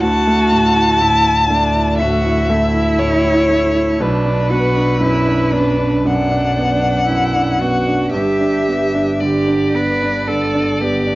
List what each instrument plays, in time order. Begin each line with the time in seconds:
Already playing: grand piano E4
0.00 double bass D2, grand piano D2, cello F#4, violin A5
0.27 grand piano A3
0.52 grand piano A2
0.76 grand piano E4
1.01 grand piano A2, cello E4
1.25 grand piano E4
1.50 grand piano A3, cello D4
1.76 grand piano E4
1.98 grand piano A2, cello F#4, violin E5
2.25 grand piano E4
2.50 grand piano A3, cello E4
2.75 grand piano E4
2.99 grand piano A2, violin C#5
3.24 grand piano E4
3.49 grand piano A3
3.75 grand piano E4
4.00 grand piano B1, double bass B1, cello D4, violin B4
4.25 grand piano D4
4.51 grand piano B3, cello F#4
4.76 grand piano D4
5.00 grand piano F#2, cello E4
5.27 grand piano D4
5.52 grand piano B3, cello D4
5.79 grand piano D4
6.05 grand piano F#2, cello D4, violin F#5
6.32 grand piano D4
6.58 grand piano B3
6.83 grand piano D4
7.08 grand piano F#2, cello E4
7.36 grand piano D4
7.60 grand piano B3, cello F#4
7.88 grand piano D4
8.14 double bass G1, grand piano G2, cello G4, violin E5
8.41 grand piano D4
8.68 grand piano B3
8.95 grand piano D4
9.20 grand piano D3, cello G4, violin D5
9.48 grand piano D4
9.74 grand piano B3, cello B4
10.02 grand piano D4
10.28 grand piano D3, cello A4
10.55 grand piano D4
10.81 grand piano B3, cello G4
11.07 grand piano D4